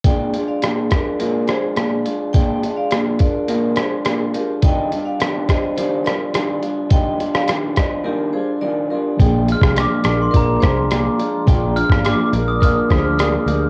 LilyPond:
<<
  \new Staff \with { instrumentName = "Glockenspiel" } { \time 4/4 \key bes \mixolydian \tempo 4 = 105 r1 | r1 | r1 | r1 |
r8 f'''8 d'''8. c'''16 bes''4. r8 | r8 f'''8 d'''8. ees'''16 f'''4. r8 | }
  \new Staff \with { instrumentName = "Vibraphone" } { \time 4/4 \key bes \mixolydian <d'' g''>8 r16 <d'' f''>16 r8 <bes' d''>8 <f' bes'>8 <aes' c''>16 r4 r16 | <d'' g''>8 r16 <d'' f''>16 r8 <bes' d''>8 <f' bes'>8 <aes' c''>16 r16 <bes' d''>16 r16 <g' bes'>16 r16 | <ees'' g''>8 r16 <d'' f''>16 r8 <c'' ees''>8 <g' c''>8 <bes' d''>16 r4 r16 | <ees'' g''>8 r16 <d'' f''>16 r8 <c'' ees''>8 <g' bes'>8 <aes' c''>16 r16 <bes' d''>16 r16 <g' bes'>16 r16 |
<d'' g''>8 r16 <d'' f''>16 r8 <bes' d''>8 <f' bes'>8 <aes' c''>16 r4 r16 | <d'' g''>8 r16 <d'' f''>16 r8 <bes' d''>8 <f' bes'>8 <aes' c''>16 r16 <bes' d''>16 r16 <g' bes'>16 r16 | }
  \new Staff \with { instrumentName = "Clean electric guitar" } { \time 4/4 \key bes \mixolydian <bes, aes d' f'>8 <aes d' f'>8 <bes, aes d' f'>8 <aes d' f'>8 <bes, aes d' f'>8 <aes d' f'>8 <bes, aes d' f'>8 <aes d' f'>8 | <bes, aes d' f'>8 <aes d' f'>8 <bes, aes d' f'>8 <aes d' f'>8 <bes, aes d' f'>8 <aes d' f'>8 <bes, aes d' f'>8 <aes d' f'>8 | <ees g d' f'>8 <g d' f'>8 <ees g d' f'>8 <g d' f'>8 <ees g d' f'>8 <g d' f'>8 <ees g d' f'>8 <g d' f'>8 | <ees g d' f'>8 <g d' f'>8 <ees g d' f'>8 <g d' f'>8 <ees g d' f'>8 <g d' f'>8 <ees g d' f'>8 <g d' f'>8 |
<bes, aes d' f'>8 <aes d' f'>8 <bes, aes d' f'>8 <aes d' f'>8 <bes, aes d' f'>8 <aes d' f'>8 <bes, aes d' f'>8 <aes d' f'>8 | <bes, aes d' f'>8 <aes d' f'>8 <bes, aes d' f'>8 <aes d' f'>8 <bes, aes d' f'>8 <aes d' f'>8 <bes, aes d' f'>8 <aes d' f'>8 | }
  \new Staff \with { instrumentName = "Reed electric piano" } { \time 4/4 \key bes \mixolydian r1 | r1 | r1 | r1 |
<f bes d' aes'>1 | <f bes d' f'>2~ <f bes d' f'>8 <f bes d' aes'>4. | }
  \new Staff \with { instrumentName = "Picked electric bass" } { \clef bass \time 4/4 \key bes \mixolydian r1 | r1 | r1 | r1 |
bes,,8. c,8 r16 bes,,8 bes,,8 c,4 r8 | bes,,8. aes,,8 r16 bes,,4 d,4 d,8 | }
  \new DrumStaff \with { instrumentName = "Drums" } \drummode { \time 4/4 <hh bd>8 hh8 <hh ss>8 <hh bd ss>8 hh8 <hh ss>8 <hh ss>8 hh8 | <hh bd>8 hh8 <hh ss>8 <hh bd>8 hh8 <hh ss>8 <hh ss>8 hh8 | <hh bd>8 hh8 <hh ss>8 <hh bd ss>8 hh8 <hh ss>8 <hh ss>8 hh8 | <hh bd>8 hh16 ss16 <hh ss>8 <hh bd ss>8 r4 r4 |
<hh bd>8 hh16 <bd ss>16 <hh ss>8 <hh ss>8 <hh bd>8 <hh bd ss>8 <hh ss>8 hh8 | <hh bd>8 hh16 <bd ss>16 <hh ss>8 hh8 <hh bd>8 <hh bd ss>8 <hh ss>8 hh8 | }
>>